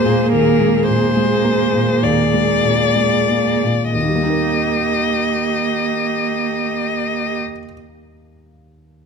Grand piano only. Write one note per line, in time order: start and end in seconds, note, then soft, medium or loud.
0.00 0.31 D#2 soft
0.00 0.05 A#2 soft
0.00 0.60 G#3 soft
0.00 1.44 A#3 soft
0.05 0.50 A#2 soft
0.33 2.01 D#2 soft
0.60 1.05 G#3 soft
0.88 1.33 A#2 soft
1.16 1.62 G#3 soft
1.44 1.90 A#3 soft
1.74 2.20 A#2 soft
2.03 3.91 D#2 soft
2.34 2.83 G#3 soft
2.63 3.16 A#2 soft
2.95 3.49 G#3 soft
3.29 3.82 A#3 soft
3.63 3.94 A#2 soft
3.94 7.37 D#2 soft
4.01 7.44 D#3 soft
4.09 7.51 G3 soft
4.15 7.58 A#3 soft
4.23 7.65 D#4 soft
4.30 7.72 A#4 soft